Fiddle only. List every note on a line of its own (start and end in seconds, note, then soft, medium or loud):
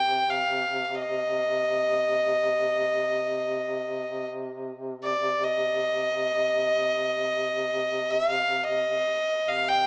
0.00 0.31 G5 medium
0.30 0.84 F5 medium
0.84 0.96 F5 soft
0.95 4.29 D#5 medium
5.04 5.45 D5 medium
5.44 8.12 D#5 medium
8.11 8.31 E5 medium
8.31 8.65 F5 medium
8.63 9.50 D#5 medium
9.48 9.70 F5 medium
9.68 9.87 G5 medium